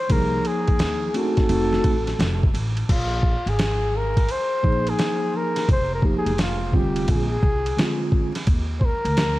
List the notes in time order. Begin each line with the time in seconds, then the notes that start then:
Already playing: C5
0.09 C2 F3 A#3 D#4 G#4 A#4, kick, ride
0.45 G#4, ride
0.67 kick, ride
0.79 D#2, snare, hi-hat pedal, ride
1.13 A3 C4 D4 F#4, ride
1.18 D#4 A4
1.37 kick, snare, ride
1.49 F1 A3 C4 D#4 F#4, ride
1.73 snare
1.84 A1, kick, ride
2.07 snare, ride
2.19 F1, snare, hi-hat pedal, ride
2.43 kick
2.54 A1, ride
2.77 ride
2.89 A#1 F4, kick, crash, ride
3.23 kick
3.46 G#1 G#4, ride
3.59 snare, hi-hat pedal, ride
3.97 A#4
4.17 kick, ride
4.28 C5, ride
4.63 A#1 F3 A#3 D#4 G#4, kick
4.87 G#4, ride
4.99 snare, hi-hat pedal, ride
5.37 A#4
5.56 snare, ride
5.69 F1 C5, kick, ride
5.94 A#4
6.02 F3 A#3 D#4 G4, kick
6.18 G#4
6.26 F1, ride
6.38 F4, snare, hi-hat pedal, ride
6.72 D3 G3 C4 F4 G4, kick
6.96 ride
7.08 A#1 G#4, kick, ride
7.43 C2, kick
7.66 ride
7.76 D3 G#3 C4 F4, snare, hi-hat pedal, ride
8.12 kick
8.35 snare, ride
8.47 D#2, kick, ride
8.80 C5, kick
8.86 A#4
9.05 D2, ride
9.17 snare, hi-hat pedal, ride